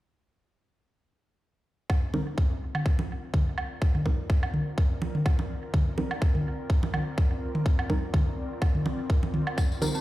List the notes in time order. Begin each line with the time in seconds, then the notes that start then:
1.90 C4, kick, high woodblock
2.14 G3 C4 D#4 F4 A#4, high tom, low conga
2.38 kick
2.75 A#4, high tom, high woodblock
2.86 kick
2.99 low conga
3.27 D5
3.34 kick, high tom
3.58 high woodblock
3.82 kick
3.95 high tom
4.06 G3 C4 D#4 A#4, kick, low conga
4.30 kick
4.43 high woodblock
4.54 high tom
4.78 kick
5.02 low conga
5.15 high tom
5.26 kick, high woodblock
5.39 low conga
5.74 kick, high tom
5.98 G3 C4 D#4 A#4, low conga
6.11 high woodblock
6.22 kick
6.35 high tom
6.70 kick
6.83 low conga
6.94 high tom, high woodblock
7.18 kick
7.55 high tom
7.66 kick
7.79 high woodblock
7.90 G3 C4 D#4 A#4, kick, low conga
8.14 kick, high tom
8.62 kick, high woodblock
8.75 high tom
8.86 low conga
9.10 kick
9.23 low conga
9.34 high tom
9.47 high woodblock
9.58 kick, tambourine, high woodblock
9.72 tambourine
9.82 G3 C4 D#4 A#4, high tom, tambourine, low conga
9.95 C4, tambourine